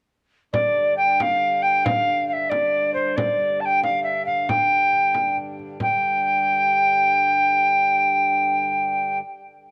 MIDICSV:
0, 0, Header, 1, 4, 480
1, 0, Start_track
1, 0, Tempo, 436999
1, 590, Time_signature, 6, 3, 24, 8
1, 10668, End_track
2, 0, Start_track
2, 0, Title_t, "Recorder"
2, 0, Program_c, 0, 74
2, 577, Note_on_c, 0, 74, 90
2, 1032, Note_off_c, 0, 74, 0
2, 1059, Note_on_c, 0, 79, 79
2, 1294, Note_off_c, 0, 79, 0
2, 1294, Note_on_c, 0, 79, 84
2, 1334, Note_on_c, 0, 77, 92
2, 1345, Note_off_c, 0, 79, 0
2, 1781, Note_on_c, 0, 79, 89
2, 1798, Note_off_c, 0, 77, 0
2, 2029, Note_on_c, 0, 77, 91
2, 2046, Note_off_c, 0, 79, 0
2, 2499, Note_off_c, 0, 77, 0
2, 2506, Note_on_c, 0, 77, 70
2, 2558, Note_on_c, 0, 76, 77
2, 2569, Note_off_c, 0, 77, 0
2, 2741, Note_on_c, 0, 74, 86
2, 2758, Note_off_c, 0, 76, 0
2, 3218, Note_off_c, 0, 74, 0
2, 3225, Note_on_c, 0, 72, 79
2, 3473, Note_on_c, 0, 74, 85
2, 3490, Note_off_c, 0, 72, 0
2, 3956, Note_on_c, 0, 81, 78
2, 3973, Note_off_c, 0, 74, 0
2, 4008, Note_on_c, 0, 79, 85
2, 4019, Note_off_c, 0, 81, 0
2, 4199, Note_off_c, 0, 79, 0
2, 4205, Note_on_c, 0, 77, 85
2, 4423, Note_off_c, 0, 77, 0
2, 4430, Note_on_c, 0, 76, 78
2, 4661, Note_off_c, 0, 76, 0
2, 4678, Note_on_c, 0, 77, 83
2, 4933, Note_on_c, 0, 79, 85
2, 4949, Note_off_c, 0, 77, 0
2, 5890, Note_off_c, 0, 79, 0
2, 6391, Note_on_c, 0, 79, 87
2, 10080, Note_off_c, 0, 79, 0
2, 10668, End_track
3, 0, Start_track
3, 0, Title_t, "Harmonium"
3, 0, Program_c, 1, 20
3, 588, Note_on_c, 1, 50, 57
3, 590, Note_on_c, 1, 43, 60
3, 6346, Note_off_c, 1, 50, 0
3, 6350, Note_off_c, 1, 43, 0
3, 6362, Note_on_c, 1, 50, 56
3, 6366, Note_on_c, 1, 43, 59
3, 10114, Note_off_c, 1, 50, 0
3, 10116, Note_off_c, 1, 43, 0
3, 10668, End_track
4, 0, Start_track
4, 0, Title_t, "Frame drum"
4, 588, Note_on_c, 9, 64, 75
4, 698, Note_off_c, 9, 64, 0
4, 838, Note_on_c, 9, 64, 25
4, 948, Note_off_c, 9, 64, 0
4, 1319, Note_on_c, 9, 64, 76
4, 1429, Note_off_c, 9, 64, 0
4, 2042, Note_on_c, 9, 64, 85
4, 2152, Note_off_c, 9, 64, 0
4, 2287, Note_on_c, 9, 64, 26
4, 2397, Note_off_c, 9, 64, 0
4, 2763, Note_on_c, 9, 64, 65
4, 2873, Note_off_c, 9, 64, 0
4, 3249, Note_on_c, 9, 64, 23
4, 3359, Note_off_c, 9, 64, 0
4, 3490, Note_on_c, 9, 64, 73
4, 3599, Note_off_c, 9, 64, 0
4, 3736, Note_on_c, 9, 64, 21
4, 3846, Note_off_c, 9, 64, 0
4, 4213, Note_on_c, 9, 64, 61
4, 4322, Note_off_c, 9, 64, 0
4, 4693, Note_on_c, 9, 64, 23
4, 4803, Note_off_c, 9, 64, 0
4, 4932, Note_on_c, 9, 64, 73
4, 5042, Note_off_c, 9, 64, 0
4, 5416, Note_on_c, 9, 64, 21
4, 5526, Note_off_c, 9, 64, 0
4, 5652, Note_on_c, 9, 64, 59
4, 5762, Note_off_c, 9, 64, 0
4, 5898, Note_on_c, 9, 64, 25
4, 6008, Note_off_c, 9, 64, 0
4, 6144, Note_on_c, 9, 64, 24
4, 6254, Note_off_c, 9, 64, 0
4, 6372, Note_on_c, 9, 64, 69
4, 6482, Note_off_c, 9, 64, 0
4, 10668, End_track
0, 0, End_of_file